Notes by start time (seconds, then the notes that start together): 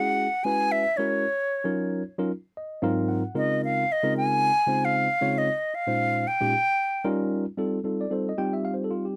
Already playing: G#3 C#4 E4 F#4 G#4 F#5
0.44 G#3 C#4 E4 F#4 B4 G#5
0.72 E5
0.97 G#3 C#4 E4 F#4 A#4 C#5
1.64 F#3 C#4 D#4 F4 A#4
2.18 F#3 C#4 D#4 F4 A#4
2.57 D#5
2.82 G#2 F#3 C4 D#4 F4 A#4 F5
3.08 F#5
3.35 C#3 G#3 C4 D#4 F4 A#4 D#5
3.65 F5
3.92 D#5
4.03 C#3 G#3 C4 D#4 F4 A#4
4.17 G#5
4.67 C#3 G#3 C4 D#4 F4 C5
4.85 F5
5.21 C#3 G#3 C4 D#4 F4 C#5
5.38 D#5
5.75 F5
5.87 A#2 G#3 C#4 D#4 F4 C5
6.27 G5
6.41 A#2 G#3 C#4 D#4 F4 G4
7.04 G3 C#4 D#4 F4 A#4
7.58 G3 C4 D#4 F4 A4
7.84 G3 C4 D#4 F4 A4
8.01 D5
8.11 G3 C4 D#4 F4 A4 C5
8.29 D#5
8.38 G3 C4 D#4 F4 G4 G5
8.53 E5
8.65 F5
8.74 C5
8.84 A4
8.91 F4
9.05 G4